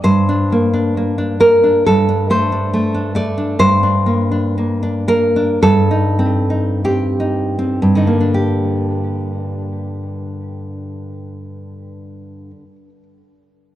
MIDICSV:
0, 0, Header, 1, 2, 480
1, 0, Start_track
1, 0, Key_signature, -2, "minor"
1, 0, Tempo, 904977
1, 22, Time_signature, 2, 2, 24, 8
1, 981, Tempo, 872093
1, 1941, Tempo, 952381
1, 2421, Tempo, 1048951
1, 2901, Tempo, 1239669
1, 3381, Tempo, 1470588
1, 3861, Tempo, 1376147
1, 5760, End_track
2, 0, Start_track
2, 0, Title_t, "Nylon-string guitar"
2, 0, Program_c, 0, 24
2, 19, Note_on_c, 0, 43, 50
2, 22, Note_on_c, 0, 72, 74
2, 153, Note_on_c, 0, 62, 40
2, 277, Note_on_c, 0, 58, 37
2, 384, Note_off_c, 0, 62, 0
2, 390, Note_on_c, 0, 62, 35
2, 509, Note_off_c, 0, 58, 0
2, 515, Note_on_c, 0, 58, 36
2, 620, Note_off_c, 0, 62, 0
2, 626, Note_on_c, 0, 62, 35
2, 724, Note_off_c, 0, 72, 0
2, 736, Note_off_c, 0, 58, 0
2, 742, Note_on_c, 0, 58, 36
2, 745, Note_on_c, 0, 70, 68
2, 861, Note_off_c, 0, 62, 0
2, 868, Note_on_c, 0, 62, 36
2, 958, Note_off_c, 0, 43, 0
2, 971, Note_off_c, 0, 70, 0
2, 979, Note_off_c, 0, 58, 0
2, 983, Note_off_c, 0, 62, 0
2, 989, Note_on_c, 0, 69, 70
2, 993, Note_on_c, 0, 43, 48
2, 1111, Note_on_c, 0, 62, 42
2, 1216, Note_off_c, 0, 69, 0
2, 1230, Note_on_c, 0, 57, 33
2, 1233, Note_on_c, 0, 72, 64
2, 1345, Note_off_c, 0, 62, 0
2, 1351, Note_on_c, 0, 62, 36
2, 1462, Note_off_c, 0, 57, 0
2, 1469, Note_on_c, 0, 57, 40
2, 1577, Note_off_c, 0, 62, 0
2, 1584, Note_on_c, 0, 62, 35
2, 1683, Note_off_c, 0, 72, 0
2, 1690, Note_off_c, 0, 57, 0
2, 1696, Note_on_c, 0, 57, 37
2, 1702, Note_on_c, 0, 74, 68
2, 1815, Note_off_c, 0, 62, 0
2, 1821, Note_on_c, 0, 62, 36
2, 1925, Note_off_c, 0, 43, 0
2, 1934, Note_off_c, 0, 74, 0
2, 1940, Note_off_c, 0, 57, 0
2, 1940, Note_on_c, 0, 43, 53
2, 1942, Note_off_c, 0, 62, 0
2, 1942, Note_on_c, 0, 72, 87
2, 2060, Note_on_c, 0, 62, 40
2, 2177, Note_on_c, 0, 58, 38
2, 2299, Note_off_c, 0, 62, 0
2, 2305, Note_on_c, 0, 62, 35
2, 2430, Note_off_c, 0, 58, 0
2, 2435, Note_on_c, 0, 58, 42
2, 2544, Note_off_c, 0, 62, 0
2, 2549, Note_on_c, 0, 62, 37
2, 2635, Note_off_c, 0, 72, 0
2, 2659, Note_off_c, 0, 58, 0
2, 2664, Note_on_c, 0, 58, 37
2, 2666, Note_on_c, 0, 70, 76
2, 2789, Note_off_c, 0, 62, 0
2, 2794, Note_on_c, 0, 62, 39
2, 2882, Note_off_c, 0, 43, 0
2, 2897, Note_off_c, 0, 70, 0
2, 2905, Note_off_c, 0, 58, 0
2, 2909, Note_off_c, 0, 62, 0
2, 2913, Note_on_c, 0, 43, 58
2, 2913, Note_on_c, 0, 69, 81
2, 3022, Note_on_c, 0, 63, 43
2, 3131, Note_on_c, 0, 60, 40
2, 3247, Note_off_c, 0, 63, 0
2, 3251, Note_on_c, 0, 63, 34
2, 3371, Note_off_c, 0, 69, 0
2, 3381, Note_off_c, 0, 60, 0
2, 3384, Note_on_c, 0, 60, 37
2, 3385, Note_on_c, 0, 67, 59
2, 3496, Note_off_c, 0, 63, 0
2, 3500, Note_on_c, 0, 63, 36
2, 3614, Note_off_c, 0, 67, 0
2, 3622, Note_off_c, 0, 60, 0
2, 3626, Note_on_c, 0, 60, 39
2, 3699, Note_off_c, 0, 43, 0
2, 3703, Note_on_c, 0, 43, 42
2, 3746, Note_on_c, 0, 50, 38
2, 3748, Note_off_c, 0, 63, 0
2, 3752, Note_on_c, 0, 63, 36
2, 3784, Note_off_c, 0, 60, 0
2, 3785, Note_on_c, 0, 58, 36
2, 3827, Note_off_c, 0, 63, 0
2, 3828, Note_on_c, 0, 62, 37
2, 3874, Note_on_c, 0, 67, 47
2, 5326, Note_off_c, 0, 43, 0
2, 5372, Note_off_c, 0, 50, 0
2, 5413, Note_off_c, 0, 58, 0
2, 5460, Note_off_c, 0, 62, 0
2, 5508, Note_off_c, 0, 67, 0
2, 5760, End_track
0, 0, End_of_file